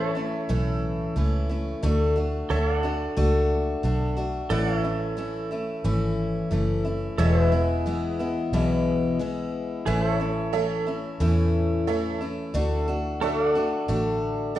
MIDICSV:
0, 0, Header, 1, 5, 480
1, 0, Start_track
1, 0, Key_signature, 3, "major"
1, 0, Tempo, 669643
1, 1312, Time_signature, 4, 2, 24, 8
1, 10459, End_track
2, 0, Start_track
2, 0, Title_t, "Honky-tonk piano"
2, 0, Program_c, 0, 3
2, 7546, Note_on_c, 0, 69, 83
2, 7546, Note_on_c, 0, 73, 74
2, 7550, Note_on_c, 0, 76, 91
2, 7850, Note_off_c, 0, 69, 0
2, 7851, Note_off_c, 0, 73, 0
2, 7852, Note_off_c, 0, 76, 0
2, 8511, Note_on_c, 0, 69, 75
2, 8513, Note_on_c, 0, 73, 65
2, 8514, Note_on_c, 0, 76, 80
2, 8813, Note_off_c, 0, 69, 0
2, 8814, Note_off_c, 0, 73, 0
2, 8815, Note_off_c, 0, 76, 0
2, 9474, Note_on_c, 0, 69, 85
2, 9476, Note_on_c, 0, 78, 86
2, 9477, Note_on_c, 0, 74, 75
2, 9775, Note_off_c, 0, 69, 0
2, 9776, Note_off_c, 0, 74, 0
2, 9776, Note_off_c, 0, 78, 0
2, 10435, Note_on_c, 0, 69, 77
2, 10435, Note_on_c, 0, 74, 70
2, 10459, Note_off_c, 0, 69, 0
2, 10459, Note_off_c, 0, 74, 0
2, 10459, End_track
3, 0, Start_track
3, 0, Title_t, "Pedal steel guitar"
3, 0, Program_c, 1, 26
3, 0, Note_on_c, 1, 68, 66
3, 0, Note_on_c, 1, 71, 64
3, 0, Note_on_c, 1, 76, 64
3, 12, Note_off_c, 1, 68, 0
3, 12, Note_on_c, 1, 69, 66
3, 55, Note_off_c, 1, 71, 0
3, 55, Note_on_c, 1, 73, 64
3, 1296, Note_off_c, 1, 69, 0
3, 1299, Note_off_c, 1, 73, 0
3, 1302, Note_off_c, 1, 76, 0
3, 1792, Note_on_c, 1, 69, 67
3, 1796, Note_on_c, 1, 73, 69
3, 1804, Note_on_c, 1, 76, 63
3, 1939, Note_off_c, 1, 73, 0
3, 1939, Note_on_c, 1, 74, 69
3, 1983, Note_off_c, 1, 76, 0
3, 1983, Note_on_c, 1, 78, 63
3, 3217, Note_off_c, 1, 69, 0
3, 3219, Note_off_c, 1, 74, 0
3, 3223, Note_off_c, 1, 78, 0
3, 3225, Note_on_c, 1, 69, 67
3, 3233, Note_on_c, 1, 74, 61
3, 3243, Note_on_c, 1, 78, 67
3, 3377, Note_off_c, 1, 74, 0
3, 3377, Note_on_c, 1, 73, 61
3, 3422, Note_off_c, 1, 78, 0
3, 3422, Note_on_c, 1, 76, 67
3, 5128, Note_off_c, 1, 69, 0
3, 5132, Note_off_c, 1, 73, 0
3, 5137, Note_off_c, 1, 76, 0
3, 5148, Note_on_c, 1, 69, 63
3, 5156, Note_on_c, 1, 73, 63
3, 5164, Note_on_c, 1, 76, 68
3, 5291, Note_off_c, 1, 69, 0
3, 5291, Note_on_c, 1, 68, 63
3, 5335, Note_off_c, 1, 73, 0
3, 5335, Note_on_c, 1, 71, 63
3, 7050, Note_off_c, 1, 68, 0
3, 7054, Note_off_c, 1, 71, 0
3, 7058, Note_off_c, 1, 76, 0
3, 7068, Note_on_c, 1, 68, 70
3, 7077, Note_on_c, 1, 71, 60
3, 7082, Note_on_c, 1, 76, 69
3, 7211, Note_off_c, 1, 68, 0
3, 7211, Note_on_c, 1, 69, 70
3, 7256, Note_off_c, 1, 71, 0
3, 7256, Note_on_c, 1, 73, 60
3, 8971, Note_off_c, 1, 69, 0
3, 8976, Note_off_c, 1, 73, 0
3, 8977, Note_off_c, 1, 76, 0
3, 9472, Note_on_c, 1, 69, 71
3, 9479, Note_on_c, 1, 73, 64
3, 9487, Note_on_c, 1, 76, 70
3, 9622, Note_off_c, 1, 73, 0
3, 9622, Note_on_c, 1, 74, 64
3, 9667, Note_off_c, 1, 76, 0
3, 9667, Note_on_c, 1, 78, 70
3, 10459, Note_off_c, 1, 69, 0
3, 10459, Note_off_c, 1, 74, 0
3, 10459, Note_off_c, 1, 78, 0
3, 10459, End_track
4, 0, Start_track
4, 0, Title_t, "Steel-string acoustic guitar"
4, 0, Program_c, 2, 25
4, 0, Note_on_c, 2, 52, 68
4, 0, Note_on_c, 2, 57, 71
4, 0, Note_on_c, 2, 61, 61
4, 0, Note_on_c, 2, 64, 68
4, 99, Note_off_c, 2, 64, 0
4, 108, Note_on_c, 2, 64, 48
4, 109, Note_off_c, 2, 61, 0
4, 111, Note_off_c, 2, 52, 0
4, 113, Note_off_c, 2, 57, 0
4, 117, Note_on_c, 2, 61, 52
4, 123, Note_on_c, 2, 57, 42
4, 346, Note_off_c, 2, 57, 0
4, 350, Note_off_c, 2, 61, 0
4, 350, Note_off_c, 2, 64, 0
4, 351, Note_on_c, 2, 45, 74
4, 353, Note_on_c, 2, 52, 77
4, 355, Note_on_c, 2, 57, 79
4, 358, Note_on_c, 2, 61, 70
4, 359, Note_on_c, 2, 64, 86
4, 821, Note_off_c, 2, 52, 0
4, 830, Note_on_c, 2, 52, 62
4, 831, Note_off_c, 2, 45, 0
4, 831, Note_off_c, 2, 61, 0
4, 832, Note_off_c, 2, 57, 0
4, 835, Note_on_c, 2, 57, 67
4, 836, Note_off_c, 2, 64, 0
4, 840, Note_on_c, 2, 61, 72
4, 844, Note_on_c, 2, 64, 76
4, 1062, Note_off_c, 2, 64, 0
4, 1070, Note_on_c, 2, 64, 51
4, 1071, Note_off_c, 2, 52, 0
4, 1071, Note_off_c, 2, 61, 0
4, 1073, Note_off_c, 2, 57, 0
4, 1080, Note_on_c, 2, 61, 50
4, 1084, Note_on_c, 2, 57, 41
4, 1304, Note_off_c, 2, 57, 0
4, 1309, Note_on_c, 2, 50, 81
4, 1311, Note_off_c, 2, 64, 0
4, 1312, Note_off_c, 2, 61, 0
4, 1313, Note_on_c, 2, 57, 93
4, 1315, Note_on_c, 2, 62, 89
4, 1318, Note_on_c, 2, 66, 97
4, 1538, Note_off_c, 2, 66, 0
4, 1546, Note_on_c, 2, 66, 53
4, 1547, Note_off_c, 2, 62, 0
4, 1550, Note_off_c, 2, 50, 0
4, 1552, Note_off_c, 2, 57, 0
4, 1555, Note_on_c, 2, 62, 47
4, 1561, Note_on_c, 2, 57, 47
4, 1786, Note_off_c, 2, 57, 0
4, 1788, Note_on_c, 2, 50, 54
4, 1789, Note_off_c, 2, 62, 0
4, 1789, Note_off_c, 2, 66, 0
4, 1795, Note_on_c, 2, 57, 67
4, 1798, Note_on_c, 2, 62, 67
4, 1800, Note_on_c, 2, 66, 67
4, 2021, Note_off_c, 2, 66, 0
4, 2028, Note_off_c, 2, 62, 0
4, 2029, Note_on_c, 2, 66, 51
4, 2030, Note_off_c, 2, 50, 0
4, 2033, Note_off_c, 2, 57, 0
4, 2037, Note_on_c, 2, 62, 56
4, 2043, Note_on_c, 2, 57, 45
4, 2261, Note_off_c, 2, 57, 0
4, 2265, Note_off_c, 2, 62, 0
4, 2266, Note_off_c, 2, 66, 0
4, 2269, Note_on_c, 2, 57, 82
4, 2274, Note_on_c, 2, 62, 83
4, 2275, Note_on_c, 2, 66, 94
4, 2744, Note_off_c, 2, 57, 0
4, 2747, Note_on_c, 2, 50, 59
4, 2748, Note_off_c, 2, 62, 0
4, 2752, Note_on_c, 2, 57, 67
4, 2753, Note_off_c, 2, 66, 0
4, 2757, Note_on_c, 2, 62, 70
4, 2761, Note_on_c, 2, 66, 70
4, 2978, Note_off_c, 2, 66, 0
4, 2985, Note_off_c, 2, 62, 0
4, 2986, Note_on_c, 2, 66, 55
4, 2989, Note_off_c, 2, 50, 0
4, 2990, Note_off_c, 2, 57, 0
4, 2993, Note_on_c, 2, 62, 51
4, 2999, Note_on_c, 2, 57, 43
4, 3220, Note_off_c, 2, 57, 0
4, 3225, Note_on_c, 2, 45, 88
4, 3227, Note_on_c, 2, 52, 94
4, 3228, Note_off_c, 2, 62, 0
4, 3228, Note_on_c, 2, 57, 87
4, 3229, Note_off_c, 2, 66, 0
4, 3231, Note_on_c, 2, 61, 88
4, 3234, Note_on_c, 2, 64, 100
4, 3456, Note_off_c, 2, 64, 0
4, 3463, Note_off_c, 2, 61, 0
4, 3465, Note_on_c, 2, 64, 51
4, 3468, Note_off_c, 2, 45, 0
4, 3469, Note_off_c, 2, 52, 0
4, 3470, Note_off_c, 2, 57, 0
4, 3471, Note_on_c, 2, 61, 51
4, 3478, Note_on_c, 2, 57, 44
4, 3702, Note_off_c, 2, 57, 0
4, 3704, Note_on_c, 2, 52, 64
4, 3706, Note_off_c, 2, 61, 0
4, 3708, Note_off_c, 2, 64, 0
4, 3710, Note_on_c, 2, 57, 58
4, 3714, Note_on_c, 2, 61, 66
4, 3718, Note_on_c, 2, 64, 73
4, 3940, Note_off_c, 2, 64, 0
4, 3946, Note_off_c, 2, 61, 0
4, 3947, Note_off_c, 2, 52, 0
4, 3948, Note_on_c, 2, 64, 48
4, 3950, Note_off_c, 2, 57, 0
4, 3955, Note_on_c, 2, 61, 49
4, 3960, Note_on_c, 2, 57, 48
4, 4182, Note_off_c, 2, 57, 0
4, 4184, Note_off_c, 2, 61, 0
4, 4187, Note_off_c, 2, 64, 0
4, 4189, Note_on_c, 2, 52, 75
4, 4191, Note_on_c, 2, 57, 79
4, 4193, Note_on_c, 2, 61, 82
4, 4195, Note_on_c, 2, 64, 85
4, 4661, Note_off_c, 2, 52, 0
4, 4662, Note_off_c, 2, 57, 0
4, 4664, Note_on_c, 2, 52, 68
4, 4666, Note_off_c, 2, 61, 0
4, 4670, Note_on_c, 2, 57, 72
4, 4675, Note_on_c, 2, 61, 67
4, 4676, Note_off_c, 2, 64, 0
4, 4679, Note_on_c, 2, 64, 67
4, 4899, Note_off_c, 2, 64, 0
4, 4907, Note_off_c, 2, 52, 0
4, 4907, Note_off_c, 2, 61, 0
4, 4907, Note_on_c, 2, 64, 52
4, 4910, Note_off_c, 2, 57, 0
4, 4915, Note_on_c, 2, 61, 46
4, 4922, Note_on_c, 2, 57, 42
4, 5148, Note_on_c, 2, 40, 79
4, 5149, Note_off_c, 2, 64, 0
4, 5149, Note_on_c, 2, 47, 87
4, 5150, Note_off_c, 2, 57, 0
4, 5152, Note_on_c, 2, 52, 92
4, 5153, Note_off_c, 2, 61, 0
4, 5153, Note_on_c, 2, 56, 87
4, 5156, Note_on_c, 2, 59, 86
4, 5157, Note_on_c, 2, 64, 94
4, 5380, Note_off_c, 2, 64, 0
4, 5385, Note_off_c, 2, 59, 0
4, 5389, Note_off_c, 2, 40, 0
4, 5389, Note_on_c, 2, 64, 54
4, 5390, Note_off_c, 2, 47, 0
4, 5390, Note_off_c, 2, 56, 0
4, 5391, Note_off_c, 2, 52, 0
4, 5393, Note_on_c, 2, 59, 50
4, 5399, Note_on_c, 2, 56, 54
4, 5403, Note_on_c, 2, 52, 48
4, 5624, Note_off_c, 2, 52, 0
4, 5630, Note_off_c, 2, 56, 0
4, 5630, Note_off_c, 2, 64, 0
4, 5632, Note_off_c, 2, 59, 0
4, 5632, Note_on_c, 2, 52, 65
4, 5638, Note_on_c, 2, 56, 63
4, 5641, Note_on_c, 2, 59, 69
4, 5645, Note_on_c, 2, 64, 66
4, 5864, Note_off_c, 2, 64, 0
4, 5870, Note_off_c, 2, 59, 0
4, 5871, Note_off_c, 2, 52, 0
4, 5873, Note_off_c, 2, 56, 0
4, 5873, Note_on_c, 2, 64, 52
4, 5879, Note_on_c, 2, 59, 53
4, 5881, Note_on_c, 2, 56, 47
4, 5885, Note_on_c, 2, 52, 48
4, 6110, Note_off_c, 2, 52, 0
4, 6112, Note_off_c, 2, 56, 0
4, 6112, Note_off_c, 2, 64, 0
4, 6114, Note_off_c, 2, 59, 0
4, 6115, Note_on_c, 2, 40, 79
4, 6117, Note_on_c, 2, 47, 86
4, 6118, Note_on_c, 2, 52, 78
4, 6120, Note_on_c, 2, 56, 77
4, 6122, Note_on_c, 2, 59, 80
4, 6124, Note_on_c, 2, 64, 87
4, 6582, Note_off_c, 2, 52, 0
4, 6586, Note_off_c, 2, 56, 0
4, 6590, Note_on_c, 2, 52, 63
4, 6592, Note_off_c, 2, 59, 0
4, 6593, Note_off_c, 2, 40, 0
4, 6594, Note_off_c, 2, 47, 0
4, 6595, Note_on_c, 2, 56, 67
4, 6597, Note_off_c, 2, 64, 0
4, 6601, Note_on_c, 2, 59, 63
4, 6604, Note_on_c, 2, 64, 73
4, 7064, Note_off_c, 2, 52, 0
4, 7070, Note_on_c, 2, 45, 75
4, 7071, Note_off_c, 2, 64, 0
4, 7073, Note_off_c, 2, 56, 0
4, 7073, Note_on_c, 2, 52, 87
4, 7075, Note_off_c, 2, 59, 0
4, 7076, Note_on_c, 2, 57, 86
4, 7078, Note_on_c, 2, 61, 92
4, 7079, Note_on_c, 2, 64, 93
4, 7301, Note_off_c, 2, 64, 0
4, 7308, Note_off_c, 2, 61, 0
4, 7309, Note_on_c, 2, 64, 51
4, 7310, Note_off_c, 2, 45, 0
4, 7312, Note_off_c, 2, 52, 0
4, 7313, Note_off_c, 2, 57, 0
4, 7317, Note_on_c, 2, 61, 50
4, 7323, Note_on_c, 2, 57, 39
4, 7547, Note_off_c, 2, 57, 0
4, 7550, Note_off_c, 2, 64, 0
4, 7551, Note_off_c, 2, 61, 0
4, 7551, Note_on_c, 2, 52, 64
4, 7555, Note_on_c, 2, 57, 55
4, 7559, Note_on_c, 2, 61, 70
4, 7564, Note_on_c, 2, 64, 60
4, 7780, Note_off_c, 2, 64, 0
4, 7789, Note_off_c, 2, 61, 0
4, 7789, Note_on_c, 2, 64, 54
4, 7791, Note_off_c, 2, 52, 0
4, 7793, Note_off_c, 2, 57, 0
4, 7798, Note_on_c, 2, 61, 51
4, 7802, Note_on_c, 2, 57, 42
4, 8025, Note_off_c, 2, 57, 0
4, 8027, Note_off_c, 2, 61, 0
4, 8029, Note_on_c, 2, 45, 76
4, 8030, Note_off_c, 2, 64, 0
4, 8031, Note_on_c, 2, 52, 81
4, 8034, Note_on_c, 2, 57, 79
4, 8035, Note_on_c, 2, 61, 80
4, 8039, Note_on_c, 2, 64, 81
4, 8502, Note_off_c, 2, 52, 0
4, 8510, Note_off_c, 2, 45, 0
4, 8510, Note_off_c, 2, 61, 0
4, 8510, Note_on_c, 2, 52, 59
4, 8512, Note_off_c, 2, 57, 0
4, 8514, Note_on_c, 2, 57, 66
4, 8515, Note_off_c, 2, 64, 0
4, 8519, Note_on_c, 2, 61, 72
4, 8523, Note_on_c, 2, 64, 72
4, 8741, Note_off_c, 2, 64, 0
4, 8749, Note_off_c, 2, 61, 0
4, 8749, Note_on_c, 2, 64, 47
4, 8751, Note_off_c, 2, 52, 0
4, 8753, Note_off_c, 2, 57, 0
4, 8758, Note_on_c, 2, 61, 49
4, 8763, Note_on_c, 2, 57, 40
4, 8983, Note_off_c, 2, 57, 0
4, 8988, Note_on_c, 2, 50, 81
4, 8991, Note_off_c, 2, 61, 0
4, 8991, Note_off_c, 2, 64, 0
4, 8991, Note_on_c, 2, 57, 87
4, 8994, Note_on_c, 2, 62, 101
4, 8998, Note_on_c, 2, 66, 90
4, 9222, Note_off_c, 2, 66, 0
4, 9230, Note_off_c, 2, 50, 0
4, 9230, Note_off_c, 2, 62, 0
4, 9230, Note_on_c, 2, 66, 57
4, 9232, Note_off_c, 2, 57, 0
4, 9238, Note_on_c, 2, 62, 52
4, 9244, Note_on_c, 2, 57, 45
4, 9469, Note_off_c, 2, 57, 0
4, 9471, Note_off_c, 2, 66, 0
4, 9472, Note_off_c, 2, 62, 0
4, 9472, Note_on_c, 2, 50, 69
4, 9477, Note_on_c, 2, 57, 64
4, 9480, Note_on_c, 2, 62, 63
4, 9485, Note_on_c, 2, 66, 66
4, 9706, Note_off_c, 2, 66, 0
4, 9712, Note_off_c, 2, 50, 0
4, 9712, Note_off_c, 2, 62, 0
4, 9715, Note_off_c, 2, 57, 0
4, 9715, Note_on_c, 2, 66, 54
4, 9721, Note_on_c, 2, 62, 47
4, 9728, Note_on_c, 2, 57, 42
4, 9947, Note_off_c, 2, 57, 0
4, 9949, Note_off_c, 2, 62, 0
4, 9951, Note_on_c, 2, 50, 78
4, 9953, Note_off_c, 2, 66, 0
4, 9955, Note_on_c, 2, 57, 81
4, 9957, Note_on_c, 2, 62, 81
4, 9961, Note_on_c, 2, 66, 85
4, 10421, Note_off_c, 2, 50, 0
4, 10427, Note_off_c, 2, 57, 0
4, 10429, Note_on_c, 2, 50, 66
4, 10430, Note_off_c, 2, 62, 0
4, 10435, Note_off_c, 2, 66, 0
4, 10436, Note_on_c, 2, 57, 65
4, 10459, Note_off_c, 2, 50, 0
4, 10459, Note_off_c, 2, 57, 0
4, 10459, End_track
5, 0, Start_track
5, 0, Title_t, "Fingered electric bass"
5, 0, Program_c, 3, 33
5, 0, Note_on_c, 3, 33, 86
5, 237, Note_off_c, 3, 33, 0
5, 355, Note_on_c, 3, 35, 75
5, 762, Note_off_c, 3, 35, 0
5, 833, Note_on_c, 3, 37, 74
5, 1241, Note_off_c, 3, 37, 0
5, 1313, Note_on_c, 3, 38, 86
5, 1734, Note_off_c, 3, 38, 0
5, 1792, Note_on_c, 3, 38, 69
5, 2200, Note_off_c, 3, 38, 0
5, 2274, Note_on_c, 3, 37, 79
5, 2681, Note_off_c, 3, 37, 0
5, 2749, Note_on_c, 3, 35, 78
5, 3158, Note_off_c, 3, 35, 0
5, 3229, Note_on_c, 3, 33, 91
5, 4073, Note_off_c, 3, 33, 0
5, 4189, Note_on_c, 3, 32, 75
5, 4597, Note_off_c, 3, 32, 0
5, 4671, Note_on_c, 3, 30, 76
5, 5078, Note_off_c, 3, 30, 0
5, 5147, Note_on_c, 3, 28, 87
5, 5992, Note_off_c, 3, 28, 0
5, 6109, Note_on_c, 3, 35, 76
5, 6953, Note_off_c, 3, 35, 0
5, 7074, Note_on_c, 3, 33, 87
5, 7916, Note_off_c, 3, 33, 0
5, 8030, Note_on_c, 3, 40, 74
5, 8874, Note_off_c, 3, 40, 0
5, 8990, Note_on_c, 3, 38, 93
5, 9835, Note_off_c, 3, 38, 0
5, 9953, Note_on_c, 3, 33, 80
5, 10459, Note_off_c, 3, 33, 0
5, 10459, End_track
0, 0, End_of_file